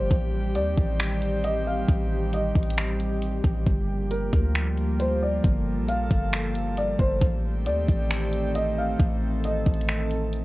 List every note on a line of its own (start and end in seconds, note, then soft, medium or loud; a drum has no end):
0.00 7.18 G3 medium
0.00 5.40 G4 medium
0.00 downlifter medium
0.11 0.57 A1 loud
0.11 3.63 D#3 medium
0.11 3.63 C4 medium
0.11 kick loud
0.11 closed hi-hat medium
0.55 0.76 D#2 medium
0.55 1.40 D5 medium
0.55 closed hi-hat medium
0.77 1.85 A1 loud
0.77 kick medium
0.77 closed hi-hat medium
0.99 finger snap loud
0.99 closed hi-hat medium
1.22 closed hi-hat medium
1.44 1.65 D#5 medium
1.44 closed hi-hat medium
1.67 1.88 F5 medium
1.89 2.53 A1 loud
1.89 kick loud
1.89 closed hi-hat medium
2.33 3.63 D#5 medium
2.33 closed hi-hat medium
2.55 3.41 A1 loud
2.55 kick medium
2.55 closed hi-hat soft
2.63 closed hi-hat medium
2.70 closed hi-hat medium
2.77 finger snap loud
2.77 closed hi-hat medium
3.00 closed hi-hat medium
3.22 closed hi-hat medium
3.44 3.65 A1 loud
3.44 kick medium
3.66 4.30 G1 loud
3.66 7.18 F3 medium
3.66 7.18 A#3 medium
3.66 kick loud
3.66 closed hi-hat medium
4.11 4.96 A#4 medium
4.11 closed hi-hat medium
4.33 5.40 D2 loud
4.33 kick medium
4.33 closed hi-hat medium
4.55 finger snap loud
4.55 closed hi-hat medium
4.78 closed hi-hat medium
5.00 5.21 C5 medium
5.00 closed hi-hat medium
5.22 5.43 D5 medium
5.44 5.79 G1 loud
5.44 7.20 A4 medium
5.44 kick loud
5.44 closed hi-hat medium
5.77 6.09 A#1 medium
5.88 6.73 F5 medium
5.88 closed hi-hat medium
6.11 6.96 G1 loud
6.11 kick medium
6.11 closed hi-hat medium
6.33 finger snap loud
6.33 closed hi-hat medium
6.55 closed hi-hat medium
6.77 6.99 D5 medium
6.77 closed hi-hat medium
6.99 7.21 G1 loud
6.99 7.21 C5 medium
6.99 kick medium
7.22 7.68 A1 loud
7.22 10.45 D#3 medium
7.22 10.45 A3 medium
7.22 10.45 C4 medium
7.22 8.98 G4 medium
7.22 kick loud
7.22 closed hi-hat medium
7.66 7.87 D#2 medium
7.66 8.51 D5 medium
7.66 closed hi-hat medium
7.89 8.96 A1 loud
7.89 kick medium
7.89 closed hi-hat medium
8.11 finger snap loud
8.11 closed hi-hat medium
8.33 closed hi-hat medium
8.55 8.76 D#5 medium
8.55 closed hi-hat medium
8.78 8.99 F5 medium
9.00 9.64 A1 loud
9.00 10.45 A4 medium
9.00 kick loud
9.00 closed hi-hat medium
9.44 10.45 D#5 medium
9.44 closed hi-hat medium
9.66 10.45 A1 loud
9.66 kick medium
9.66 closed hi-hat soft
9.74 closed hi-hat medium
9.81 closed hi-hat medium
9.88 finger snap loud
9.88 closed hi-hat medium
10.11 closed hi-hat medium
10.33 closed hi-hat medium